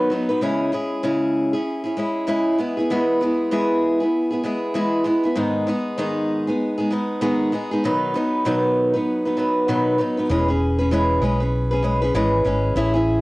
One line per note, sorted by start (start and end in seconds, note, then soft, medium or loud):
0.00 0.11 B2 medium
0.00 0.12 D#3 medium
0.00 0.10 B3 medium
0.00 0.11 D#4 medium
0.00 0.12 B4 medium
0.10 0.30 F#3 medium
0.10 0.29 B3 medium
0.10 0.29 D#4 medium
0.10 0.28 B4 medium
0.29 0.42 F#3 soft
0.29 0.42 B3 soft
0.29 0.42 D#4 soft
0.29 0.42 B4 medium
0.41 0.73 C#3 medium
0.41 0.71 G#3 medium
0.41 0.72 C#4 medium
0.41 0.72 E4 medium
0.41 0.73 G#4 medium
0.72 1.03 G#3 medium
0.72 1.03 C#4 medium
0.72 1.03 E4 medium
0.72 1.04 G#4 medium
1.03 1.54 C#3 medium
1.03 1.54 G#3 medium
1.03 1.54 C#4 medium
1.03 1.54 E4 medium
1.03 1.52 G#4 medium
1.53 1.86 C#4 soft
1.53 1.84 E4 soft
1.53 1.83 G#4 medium
1.84 1.97 C#4 soft
1.84 1.98 E4 soft
1.84 1.97 G#4 soft
1.97 2.26 G#3 medium
1.97 2.27 C#4 medium
1.97 2.27 E4 medium
1.97 2.28 G#4 medium
2.27 2.59 C#3 medium
2.27 2.57 G#3 medium
2.27 2.59 C#4 medium
2.27 2.59 E4 medium
2.27 2.59 G#4 medium
2.58 2.77 G#3 medium
2.58 2.78 B3 medium
2.58 2.78 E4 medium
2.58 2.76 G#4 medium
2.77 2.90 B3 soft
2.77 2.91 E4 soft
2.77 2.90 G#4 soft
2.90 3.21 E3 medium
2.90 3.19 G#3 medium
2.90 3.21 B3 medium
2.90 3.22 E4 medium
2.90 3.22 G#4 medium
3.21 3.50 G#3 medium
3.21 3.51 B3 medium
3.21 3.51 E4 medium
3.21 3.52 G#4 medium
3.51 4.01 E3 medium
3.51 4.01 G#3 medium
3.51 4.01 B3 medium
3.51 4.00 E4 medium
3.51 3.99 G#4 medium
4.00 4.32 B3 soft
4.00 4.31 E4 soft
4.00 4.29 G#4 soft
4.30 4.43 B3 soft
4.30 4.44 E4 soft
4.30 4.44 G#4 soft
4.43 4.74 G#3 medium
4.43 4.74 B3 medium
4.43 4.74 E4 medium
4.43 4.75 G#4 medium
4.74 5.06 E3 medium
4.74 5.03 G#3 medium
4.74 5.04 B3 medium
4.74 5.05 E4 medium
4.74 5.06 G#4 medium
5.04 5.24 G#3 medium
5.04 5.24 B3 medium
5.04 5.24 E4 medium
5.04 5.22 G#4 medium
5.23 5.36 B3 soft
5.23 5.37 E4 soft
5.23 5.36 G#4 soft
5.35 5.67 G#2 medium
5.35 5.67 D#3 medium
5.35 5.66 G#3 medium
5.35 5.67 B3 medium
5.35 5.67 D#4 medium
5.35 5.68 G#4 medium
5.67 5.97 G#3 medium
5.67 5.97 B3 medium
5.67 5.98 D#4 medium
5.67 5.98 G#4 medium
5.98 6.48 G#2 medium
5.98 6.48 D#3 medium
5.98 6.48 G#3 medium
5.98 6.48 B3 medium
5.98 6.47 D#4 medium
5.98 6.46 G#4 medium
6.47 6.79 G#3 soft
6.47 6.78 B3 soft
6.47 6.77 D#4 soft
6.47 6.76 G#4 soft
6.78 6.89 G#3 soft
6.78 6.90 B3 soft
6.78 6.91 D#4 soft
6.78 6.91 G#4 soft
6.90 7.21 G#3 medium
6.90 7.21 B3 medium
6.90 7.21 D#4 medium
6.90 7.22 G#4 medium
7.21 7.52 G#2 medium
7.21 7.53 D#3 medium
7.21 7.51 G#3 medium
7.21 7.52 B3 medium
7.21 7.53 D#4 medium
7.21 7.53 G#4 medium
7.52 7.71 G#3 medium
7.52 7.71 B3 medium
7.52 7.71 D#4 medium
7.52 7.70 G#4 medium
7.71 7.85 G#3 soft
7.71 7.84 B3 soft
7.71 7.84 D#4 soft
7.71 7.84 G#4 medium
7.84 8.15 B2 medium
7.84 8.15 D#3 medium
7.84 8.13 F#3 medium
7.84 8.14 B3 medium
7.84 8.15 D#4 medium
7.84 8.15 B4 medium
8.14 8.45 F#3 medium
8.14 8.45 B3 medium
8.14 8.46 D#4 medium
8.14 8.46 B4 medium
8.45 8.95 B2 medium
8.45 8.95 D#3 medium
8.45 8.95 F#3 medium
8.45 8.94 B3 medium
8.45 8.94 D#4 medium
8.45 8.92 B4 medium
8.94 9.26 F#3 soft
8.94 9.26 B3 soft
8.94 9.25 D#4 soft
8.94 9.24 B4 medium
9.25 9.36 F#3 soft
9.25 9.37 B3 soft
9.25 9.37 D#4 soft
9.25 9.38 B4 soft
9.37 9.68 F#3 medium
9.37 9.68 B3 medium
9.37 9.68 D#4 medium
9.37 9.69 B4 medium
9.68 9.99 B2 medium
9.68 9.99 D#3 medium
9.68 9.97 F#3 medium
9.68 9.98 B3 medium
9.68 9.99 D#4 medium
9.68 10.00 B4 medium
9.98 10.17 F#3 medium
9.98 10.18 B3 medium
9.98 10.17 D#4 medium
9.98 10.16 B4 medium
10.17 10.30 F#3 soft
10.17 10.30 B3 soft
10.17 10.30 D#4 soft
10.17 10.30 B4 soft
10.29 11.18 E1 medium
10.29 10.48 E3 medium
10.29 10.49 G#3 medium
10.29 10.49 C#4 medium
10.29 10.49 G#4 medium
10.29 10.47 B4 medium
10.48 10.80 C#4 soft
10.48 10.79 G#4 medium
10.48 10.77 B4 medium
10.79 10.91 C#4 soft
10.79 10.92 G#4 soft
10.79 10.91 B4 medium
10.91 11.22 E3 medium
10.91 11.20 G#3 medium
10.91 11.22 C#4 medium
10.91 11.22 G#4 medium
10.91 11.23 B4 medium
11.21 12.10 B1 medium
11.21 11.41 G#3 medium
11.21 11.41 C#4 medium
11.21 11.40 G#4 medium
11.21 11.39 B4 medium
11.40 11.72 C#4 soft
11.40 11.71 G#4 soft
11.40 11.70 B4 soft
11.71 11.83 C#4 soft
11.71 11.83 G#4 soft
11.71 11.84 B4 medium
11.83 12.02 G#3 medium
11.83 12.02 C#4 medium
11.83 12.02 G#4 medium
11.83 12.00 B4 medium
12.02 12.14 C#4 soft
12.02 12.15 G#4 soft
12.02 12.14 B4 medium
12.14 12.43 G#1 medium
12.14 12.45 E3 medium
12.14 12.43 G#3 medium
12.14 12.44 C#4 medium
12.14 12.45 G#4 medium
12.14 12.46 B4 medium
12.45 12.74 G#1 medium
12.45 12.75 G#3 medium
12.45 12.75 C#4 medium
12.45 12.76 G#4 medium
12.45 12.77 B4 medium
12.75 13.21 A1 medium
12.75 12.95 A3 medium
12.75 12.95 C#4 medium
12.75 12.94 E4 medium
12.75 12.92 G#4 medium
12.94 13.21 C#4 soft
12.94 13.21 E4 medium
12.94 13.21 G#4 medium